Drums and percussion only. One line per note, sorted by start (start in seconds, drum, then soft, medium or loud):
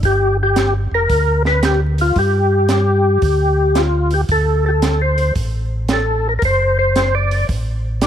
0.03 kick soft
0.03 open hi-hat soft
0.56 snare medium
0.56 closed hi-hat soft
1.10 kick soft
1.10 open hi-hat soft
1.45 snare soft
1.63 snare medium
1.63 closed hi-hat medium
1.98 open hi-hat soft
2.16 kick soft
2.16 open hi-hat soft
2.69 snare medium
2.69 closed hi-hat soft
3.22 kick soft
3.22 open hi-hat soft
3.75 snare medium
3.75 closed hi-hat soft
4.11 open hi-hat soft
4.29 kick soft
4.29 open hi-hat soft
4.82 snare medium
4.82 closed hi-hat medium
5.18 open hi-hat soft
5.36 kick soft
5.36 open hi-hat soft
5.88 snare medium
5.88 closed hi-hat soft
6.42 kick soft
6.42 open hi-hat soft
6.96 snare medium
6.96 closed hi-hat soft
7.31 open hi-hat soft
7.49 kick soft
7.49 open hi-hat soft
8.01 snare medium
8.01 closed hi-hat soft